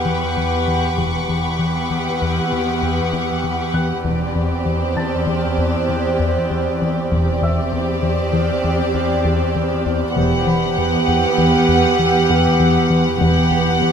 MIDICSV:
0, 0, Header, 1, 11, 480
1, 0, Start_track
1, 0, Key_signature, 1, "minor"
1, 0, Tempo, 614754
1, 760, Time_signature, 5, 2, 24, 8
1, 5560, Tempo, 608519
1, 10924, End_track
2, 0, Start_track
2, 0, Title_t, "Violin section"
2, 0, Program_c, 0, 48
2, 0, Note_on_c, 0, 83, 21
2, 0, Note_on_c, 0, 85, 21
2, 0, Note_on_c, 0, 86, 21
2, 2894, Note_off_c, 0, 83, 0
2, 2895, Note_off_c, 0, 85, 0
2, 2895, Note_off_c, 0, 86, 0
2, 10924, End_track
3, 0, Start_track
3, 0, Title_t, "Grand piano"
3, 0, Program_c, 1, 0
3, 0, Control_c, 1, 64, 127
3, 2920, Note_on_c, 1, 90, 25
3, 3178, Control_c, 1, 64, 0
3, 3304, Control_c, 1, 64, 127
3, 3876, Note_on_c, 1, 81, 21
3, 3879, Note_on_c, 1, 93, 26
3, 4326, Note_off_c, 1, 90, 0
3, 5287, Note_off_c, 1, 81, 0
3, 5289, Note_off_c, 1, 93, 0
3, 5806, Note_on_c, 1, 88, 32
3, 5808, Note_on_c, 1, 76, 25
3, 7210, Note_off_c, 1, 88, 0
3, 7211, Note_off_c, 1, 76, 0
3, 7973, Control_c, 1, 64, 0
3, 8109, Control_c, 1, 64, 127
3, 8203, Note_on_c, 1, 83, 43
3, 9609, Note_off_c, 1, 83, 0
3, 9651, Note_on_c, 1, 67, 44
3, 10924, Note_off_c, 1, 67, 0
3, 10924, End_track
4, 0, Start_track
4, 0, Title_t, "Violin section"
4, 0, Program_c, 2, 48
4, 0, Note_on_c, 2, 78, 36
4, 727, Note_off_c, 2, 78, 0
4, 759, Note_on_c, 2, 78, 28
4, 3133, Note_off_c, 2, 78, 0
4, 3163, Note_on_c, 2, 74, 33
4, 5528, Note_off_c, 2, 74, 0
4, 5566, Note_on_c, 2, 74, 39
4, 7930, Note_off_c, 2, 74, 0
4, 7957, Note_on_c, 2, 78, 45
4, 10325, Note_off_c, 2, 78, 0
4, 10357, Note_on_c, 2, 78, 54
4, 10924, Note_off_c, 2, 78, 0
4, 10924, End_track
5, 0, Start_track
5, 0, Title_t, "Ambient pad"
5, 0, Program_c, 3, 92
5, 0, Note_on_c, 3, 67, 44
5, 0, Note_on_c, 3, 71, 51
5, 0, Note_on_c, 3, 78, 47
5, 722, Note_off_c, 3, 67, 0
5, 722, Note_off_c, 3, 71, 0
5, 722, Note_off_c, 3, 78, 0
5, 764, Note_on_c, 3, 78, 40
5, 768, Note_on_c, 3, 67, 39
5, 769, Note_on_c, 3, 71, 39
5, 3136, Note_off_c, 3, 78, 0
5, 3137, Note_off_c, 3, 67, 0
5, 3138, Note_off_c, 3, 71, 0
5, 3159, Note_on_c, 3, 74, 40
5, 3162, Note_on_c, 3, 72, 40
5, 3166, Note_on_c, 3, 67, 38
5, 5529, Note_off_c, 3, 67, 0
5, 5557, Note_off_c, 3, 74, 0
5, 5559, Note_off_c, 3, 72, 0
5, 5569, Note_on_c, 3, 67, 43
5, 5570, Note_on_c, 3, 72, 42
5, 5572, Note_on_c, 3, 74, 41
5, 7932, Note_off_c, 3, 67, 0
5, 7932, Note_off_c, 3, 72, 0
5, 7933, Note_off_c, 3, 74, 0
5, 7950, Note_on_c, 3, 67, 45
5, 7953, Note_on_c, 3, 78, 46
5, 7954, Note_on_c, 3, 71, 43
5, 10321, Note_off_c, 3, 67, 0
5, 10336, Note_off_c, 3, 78, 0
5, 10338, Note_off_c, 3, 71, 0
5, 10343, Note_on_c, 3, 67, 46
5, 10345, Note_on_c, 3, 78, 46
5, 10347, Note_on_c, 3, 71, 47
5, 10924, Note_off_c, 3, 67, 0
5, 10924, Note_off_c, 3, 71, 0
5, 10924, Note_off_c, 3, 78, 0
5, 10924, End_track
6, 0, Start_track
6, 0, Title_t, "Violin section"
6, 0, Program_c, 4, 48
6, 0, Note_on_c, 4, 67, 33
6, 728, Note_off_c, 4, 67, 0
6, 761, Note_on_c, 4, 67, 26
6, 3134, Note_off_c, 4, 67, 0
6, 3167, Note_on_c, 4, 67, 29
6, 5530, Note_off_c, 4, 67, 0
6, 5560, Note_on_c, 4, 67, 33
6, 7927, Note_off_c, 4, 67, 0
6, 7967, Note_on_c, 4, 67, 41
6, 10330, Note_off_c, 4, 67, 0
6, 10358, Note_on_c, 4, 67, 45
6, 10924, Note_off_c, 4, 67, 0
6, 10924, End_track
7, 0, Start_track
7, 0, Title_t, "Viola section"
7, 0, Program_c, 5, 48
7, 0, Note_on_c, 5, 59, 35
7, 732, Note_off_c, 5, 59, 0
7, 760, Note_on_c, 5, 59, 28
7, 3134, Note_off_c, 5, 59, 0
7, 3166, Note_on_c, 5, 60, 30
7, 5529, Note_off_c, 5, 60, 0
7, 5567, Note_on_c, 5, 60, 37
7, 7931, Note_off_c, 5, 60, 0
7, 7961, Note_on_c, 5, 59, 44
7, 10327, Note_off_c, 5, 59, 0
7, 10354, Note_on_c, 5, 59, 53
7, 10924, Note_off_c, 5, 59, 0
7, 10924, End_track
8, 0, Start_track
8, 0, Title_t, "Analog synth bass"
8, 0, Program_c, 6, 38
8, 43, Note_on_c, 6, 40, 52
8, 187, Note_off_c, 6, 40, 0
8, 289, Note_on_c, 6, 40, 41
8, 430, Note_off_c, 6, 40, 0
8, 527, Note_on_c, 6, 40, 41
8, 669, Note_off_c, 6, 40, 0
8, 765, Note_on_c, 6, 40, 57
8, 907, Note_off_c, 6, 40, 0
8, 1007, Note_on_c, 6, 40, 46
8, 1150, Note_off_c, 6, 40, 0
8, 1243, Note_on_c, 6, 40, 40
8, 1389, Note_off_c, 6, 40, 0
8, 1488, Note_on_c, 6, 40, 40
8, 1633, Note_off_c, 6, 40, 0
8, 1733, Note_on_c, 6, 40, 58
8, 1876, Note_off_c, 6, 40, 0
8, 1971, Note_on_c, 6, 40, 41
8, 2114, Note_off_c, 6, 40, 0
8, 2205, Note_on_c, 6, 40, 42
8, 2350, Note_off_c, 6, 40, 0
8, 2446, Note_on_c, 6, 40, 52
8, 2589, Note_off_c, 6, 40, 0
8, 2683, Note_on_c, 6, 40, 40
8, 2828, Note_off_c, 6, 40, 0
8, 2919, Note_on_c, 6, 40, 47
8, 3065, Note_off_c, 6, 40, 0
8, 3159, Note_on_c, 6, 40, 59
8, 3304, Note_off_c, 6, 40, 0
8, 3398, Note_on_c, 6, 40, 45
8, 3542, Note_off_c, 6, 40, 0
8, 3635, Note_on_c, 6, 40, 46
8, 3781, Note_off_c, 6, 40, 0
8, 3877, Note_on_c, 6, 40, 43
8, 4022, Note_off_c, 6, 40, 0
8, 4114, Note_on_c, 6, 40, 62
8, 4259, Note_off_c, 6, 40, 0
8, 4357, Note_on_c, 6, 40, 46
8, 4502, Note_off_c, 6, 40, 0
8, 4598, Note_on_c, 6, 40, 44
8, 4743, Note_off_c, 6, 40, 0
8, 4838, Note_on_c, 6, 40, 56
8, 4983, Note_off_c, 6, 40, 0
8, 5080, Note_on_c, 6, 40, 43
8, 5224, Note_off_c, 6, 40, 0
8, 5324, Note_on_c, 6, 40, 45
8, 5467, Note_off_c, 6, 40, 0
8, 5557, Note_on_c, 6, 40, 57
8, 5702, Note_off_c, 6, 40, 0
8, 5797, Note_on_c, 6, 40, 49
8, 5942, Note_off_c, 6, 40, 0
8, 6040, Note_on_c, 6, 40, 47
8, 6185, Note_off_c, 6, 40, 0
8, 6275, Note_on_c, 6, 40, 44
8, 6421, Note_off_c, 6, 40, 0
8, 6514, Note_on_c, 6, 40, 67
8, 6660, Note_off_c, 6, 40, 0
8, 6760, Note_on_c, 6, 40, 50
8, 6903, Note_off_c, 6, 40, 0
8, 7001, Note_on_c, 6, 40, 47
8, 7144, Note_off_c, 6, 40, 0
8, 7240, Note_on_c, 6, 40, 64
8, 7383, Note_off_c, 6, 40, 0
8, 7481, Note_on_c, 6, 40, 47
8, 7624, Note_off_c, 6, 40, 0
8, 7721, Note_on_c, 6, 40, 45
8, 7864, Note_off_c, 6, 40, 0
8, 7959, Note_on_c, 6, 40, 66
8, 8103, Note_off_c, 6, 40, 0
8, 8203, Note_on_c, 6, 40, 49
8, 8346, Note_off_c, 6, 40, 0
8, 8446, Note_on_c, 6, 40, 50
8, 8589, Note_off_c, 6, 40, 0
8, 8684, Note_on_c, 6, 40, 48
8, 8828, Note_off_c, 6, 40, 0
8, 8920, Note_on_c, 6, 40, 72
8, 9064, Note_off_c, 6, 40, 0
8, 9161, Note_on_c, 6, 40, 51
8, 9305, Note_off_c, 6, 40, 0
8, 9403, Note_on_c, 6, 40, 51
8, 9545, Note_off_c, 6, 40, 0
8, 9643, Note_on_c, 6, 40, 62
8, 9785, Note_off_c, 6, 40, 0
8, 9882, Note_on_c, 6, 40, 48
8, 10025, Note_off_c, 6, 40, 0
8, 10121, Note_on_c, 6, 40, 49
8, 10264, Note_off_c, 6, 40, 0
8, 10362, Note_on_c, 6, 40, 66
8, 10504, Note_off_c, 6, 40, 0
8, 10603, Note_on_c, 6, 40, 48
8, 10745, Note_off_c, 6, 40, 0
8, 10845, Note_on_c, 6, 40, 52
8, 10924, Note_off_c, 6, 40, 0
8, 10924, End_track
9, 0, Start_track
9, 0, Title_t, "Cello section"
9, 0, Program_c, 7, 48
9, 0, Note_on_c, 7, 40, 38
9, 728, Note_off_c, 7, 40, 0
9, 766, Note_on_c, 7, 40, 30
9, 3137, Note_off_c, 7, 40, 0
9, 3170, Note_on_c, 7, 40, 36
9, 5531, Note_off_c, 7, 40, 0
9, 5558, Note_on_c, 7, 40, 41
9, 7926, Note_off_c, 7, 40, 0
9, 7955, Note_on_c, 7, 40, 47
9, 10324, Note_off_c, 7, 40, 0
9, 10357, Note_on_c, 7, 40, 56
9, 10924, Note_off_c, 7, 40, 0
9, 10924, End_track
10, 0, Start_track
10, 0, Title_t, "Synth drone"
10, 0, Program_c, 8, 95
10, 0, Note_on_c, 8, 40, 48
10, 729, Note_off_c, 8, 40, 0
10, 753, Note_on_c, 8, 40, 51
10, 3130, Note_off_c, 8, 40, 0
10, 3166, Note_on_c, 8, 40, 53
10, 5529, Note_off_c, 8, 40, 0
10, 5554, Note_on_c, 8, 40, 54
10, 7924, Note_off_c, 8, 40, 0
10, 7955, Note_on_c, 8, 40, 61
10, 10324, Note_off_c, 8, 40, 0
10, 10347, Note_on_c, 8, 40, 62
10, 10924, Note_off_c, 8, 40, 0
10, 10924, End_track
11, 0, Start_track
11, 0, Title_t, "Double bass section"
11, 0, Program_c, 10, 48
11, 754, Note_on_c, 10, 28, 27
11, 1208, Note_off_c, 10, 28, 0
11, 3161, Note_on_c, 10, 28, 30
11, 3609, Note_off_c, 10, 28, 0
11, 5553, Note_on_c, 10, 28, 37
11, 6006, Note_off_c, 10, 28, 0
11, 7952, Note_on_c, 10, 28, 46
11, 8406, Note_off_c, 10, 28, 0
11, 10348, Note_on_c, 10, 28, 50
11, 10801, Note_off_c, 10, 28, 0
11, 10924, End_track
0, 0, End_of_file